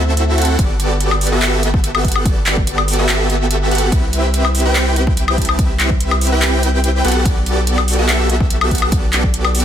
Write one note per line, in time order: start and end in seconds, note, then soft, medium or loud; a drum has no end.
0.00 0.57 D2 medium
0.00 0.36 C4 loud
0.00 0.36 E4 medium
0.00 0.36 F#4 medium
0.00 0.36 A4 medium
0.00 0.36 E5 loud
0.17 closed hi-hat medium
0.38 0.56 C4 medium
0.38 0.56 E4 medium
0.38 0.56 F#4 medium
0.38 0.56 A4 medium
0.38 0.56 F#5 medium
0.38 closed hi-hat medium
0.42 closed hi-hat medium
0.45 closed hi-hat medium
0.59 3.90 G1 medium
0.59 1.30 B3 medium
0.59 1.30 F#4 medium
0.59 1.30 G4 medium
0.59 1.30 A4 medium
0.59 1.30 D5 medium
0.59 kick loud
0.59 closed hi-hat medium
0.59 ride soft
0.80 closed hi-hat medium
1.00 closed hi-hat medium
1.11 high woodblock medium
1.21 open hi-hat medium
1.27 closed hi-hat medium
1.32 1.61 B3 loud
1.32 1.61 F#4 medium
1.32 1.61 G4 medium
1.32 1.61 A4 medium
1.32 1.61 E5 loud
1.42 clap loud
1.42 closed hi-hat medium
1.63 2.02 B3 medium
1.63 2.02 F#4 medium
1.63 2.02 G4 medium
1.63 2.02 A4 medium
1.63 2.02 E5 loud
1.63 closed hi-hat medium
1.74 kick loud
1.84 closed hi-hat medium
1.95 high woodblock medium
2.05 2.23 B3 medium
2.05 2.23 F#4 medium
2.05 2.23 G4 medium
2.05 2.23 A4 medium
2.05 2.23 F#5 medium
2.05 kick medium
2.05 closed hi-hat medium
2.08 closed hi-hat medium
2.12 closed hi-hat medium
2.12 high woodblock medium
2.26 2.96 B3 medium
2.26 2.96 F#4 medium
2.26 2.96 G4 medium
2.26 2.96 A4 medium
2.26 2.96 D5 medium
2.26 kick loud
2.26 closed hi-hat medium
2.26 ride soft
2.46 clap medium
2.46 closed hi-hat medium
2.57 kick medium
2.67 closed hi-hat medium
2.78 high woodblock medium
2.88 open hi-hat medium
2.93 closed hi-hat medium
2.99 3.27 B3 loud
2.99 3.27 F#4 medium
2.99 3.27 G4 medium
2.99 3.27 A4 medium
2.99 3.27 E5 loud
3.09 clap loud
3.09 closed hi-hat medium
3.30 3.69 B3 loud
3.30 3.69 F#4 medium
3.30 3.69 G4 medium
3.30 3.69 A4 medium
3.30 3.69 E5 loud
3.30 closed hi-hat medium
3.51 closed hi-hat medium
3.71 3.90 B3 medium
3.71 3.90 F#4 medium
3.71 3.90 G4 medium
3.71 3.90 A4 medium
3.71 3.90 F#5 medium
3.71 closed hi-hat soft
3.75 closed hi-hat medium
3.78 closed hi-hat medium
3.92 7.03 C2 medium
3.92 4.63 C4 medium
3.92 4.63 E4 medium
3.92 4.63 G4 medium
3.92 4.63 B4 medium
3.92 4.63 E5 medium
3.92 kick loud
3.92 closed hi-hat medium
3.92 ride medium
4.13 closed hi-hat medium
4.34 closed hi-hat medium
4.45 high woodblock medium
4.55 open hi-hat medium
4.60 closed hi-hat medium
4.65 4.94 C4 loud
4.65 4.94 E4 medium
4.65 4.94 G4 medium
4.65 4.94 B4 medium
4.65 4.94 G5 loud
4.75 clap loud
4.75 closed hi-hat medium
4.96 5.36 C4 medium
4.96 5.36 E4 medium
4.96 5.36 G4 medium
4.96 5.36 B4 medium
4.96 5.36 G5 loud
4.96 closed hi-hat medium
5.07 kick loud
5.17 closed hi-hat medium
5.28 high woodblock medium
5.38 5.56 C4 medium
5.38 5.56 E4 medium
5.38 5.56 G4 medium
5.38 5.56 B4 medium
5.38 5.56 A5 medium
5.38 kick medium
5.38 closed hi-hat soft
5.42 closed hi-hat medium
5.45 closed hi-hat medium
5.45 high woodblock medium
5.59 6.30 C4 medium
5.59 6.30 E4 medium
5.59 6.30 G4 medium
5.59 6.30 B4 medium
5.59 6.30 E5 loud
5.59 kick loud
5.59 closed hi-hat medium
5.59 ride soft
5.80 clap medium
5.80 closed hi-hat medium
5.90 kick medium
6.00 closed hi-hat medium
6.11 high woodblock medium
6.21 open hi-hat loud
6.27 closed hi-hat medium
6.32 6.61 C4 loud
6.32 6.61 E4 medium
6.32 6.61 G4 medium
6.32 6.61 B4 medium
6.32 6.61 G5 loud
6.42 clap loud
6.42 closed hi-hat medium
6.63 7.02 C4 medium
6.63 7.02 E4 medium
6.63 7.02 G4 medium
6.63 7.02 B4 medium
6.63 7.02 G5 loud
6.63 closed hi-hat medium
6.84 closed hi-hat medium
7.05 9.65 B1 medium
7.05 7.23 B3 medium
7.05 7.23 F#4 medium
7.05 7.23 G4 medium
7.05 7.23 A4 medium
7.05 7.23 F#5 medium
7.05 closed hi-hat soft
7.08 closed hi-hat medium
7.12 closed hi-hat medium
7.25 7.96 B3 medium
7.25 7.96 F#4 medium
7.25 7.96 G4 medium
7.25 7.96 A4 medium
7.25 7.96 D5 loud
7.25 kick loud
7.25 closed hi-hat medium
7.25 ride soft
7.46 closed hi-hat medium
7.67 closed hi-hat medium
7.78 high woodblock medium
7.88 open hi-hat loud
7.93 closed hi-hat medium
7.99 8.27 B3 loud
7.99 8.27 F#4 medium
7.99 8.27 G4 medium
7.99 8.27 A4 medium
7.99 8.27 E5 loud
8.09 clap loud
8.09 closed hi-hat medium
8.30 8.69 B3 medium
8.30 8.69 F#4 medium
8.30 8.69 G4 medium
8.30 8.69 A4 medium
8.30 8.69 E5 loud
8.30 closed hi-hat medium
8.40 kick loud
8.50 closed hi-hat medium
8.61 high woodblock medium
8.71 8.90 B3 medium
8.71 8.90 F#4 medium
8.71 8.90 G4 medium
8.71 8.90 A4 medium
8.71 8.90 F#5 medium
8.71 kick medium
8.71 closed hi-hat soft
8.75 closed hi-hat medium
8.78 closed hi-hat medium
8.78 high woodblock medium
8.92 9.63 B3 medium
8.92 9.63 F#4 medium
8.92 9.63 G4 medium
8.92 9.63 A4 medium
8.92 9.63 D5 loud
8.92 kick loud
8.92 closed hi-hat medium
8.92 ride soft
9.13 clap medium
9.13 closed hi-hat medium
9.24 kick medium
9.34 closed hi-hat medium
9.45 high woodblock medium
9.55 open hi-hat loud
9.60 closed hi-hat medium